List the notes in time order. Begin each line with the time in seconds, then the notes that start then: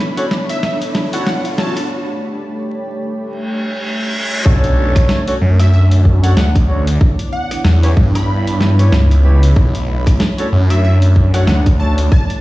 Already playing: B3 D4 E4 A4 C#5 B5, riser
0.17 C#4 D4 F#4 A4 C#5, closed hi-hat
0.31 snare
0.49 E5 A5, closed hi-hat
0.63 E5, snare
0.82 closed hi-hat
0.95 snare
1.13 C#4 D4 F#4 A4 C#5 F#5, closed hi-hat
1.27 F#5, snare
1.45 closed hi-hat
1.58 C#4 D4 F#4 A4 C#5 A5, snare
1.77 closed hi-hat
1.91 A3 G4
3.18 reverse cymbal
4.45 B1 A3 C#4 D4 F#4 A4 C#5, kick, impact
4.64 closed hi-hat
4.96 kick, cross-stick, closed hi-hat
5.09 snare
5.27 C#4 D4 F#4 A4 C#5, closed hi-hat
5.41 F#2
5.60 E5, cross-stick, closed hi-hat
5.74 E5
5.91 closed hi-hat
6.05 kick
6.23 C#4 D4 F#4 A4 C#5 F#5, closed hi-hat
6.37 D2 F#5, snare
6.55 kick, closed hi-hat
6.69 C#4 D4 F#4 A4 C#5
6.87 closed hi-hat
7.00 B3 E4, kick
7.19 closed hi-hat
7.33 F#5
7.51 cross-stick, closed hi-hat
7.65 E2, snare
7.83 C#4 E4 G4 B4 C#5, closed hi-hat
7.97 G2, kick
8.15 B5, cross-stick, closed hi-hat
8.47 closed hi-hat
8.61 snare
8.79 C#4 E4 G4 B4 C#5, closed hi-hat
8.92 C#2, snare
9.11 closed hi-hat
9.24 C#4 E4 G4 B4 C#5
9.43 closed hi-hat
9.56 B1 A3 D4, kick
9.75 closed hi-hat
10.07 kick, cross-stick, closed hi-hat
10.20 snare
10.38 C#4 D4 F#4 A4 C#5, closed hi-hat
10.52 F#2
10.70 E5 A5, cross-stick, closed hi-hat
10.84 E5
11.02 closed hi-hat
11.16 kick
11.34 C#4 D4 F#4 A4 C#5 F#5, cross-stick, closed hi-hat
11.47 D2 F#5, snare
11.66 kick, closed hi-hat
11.80 C#4 D4 F#4 A4 C#5 A5
11.98 closed hi-hat
12.11 G4 A5, kick
12.30 closed hi-hat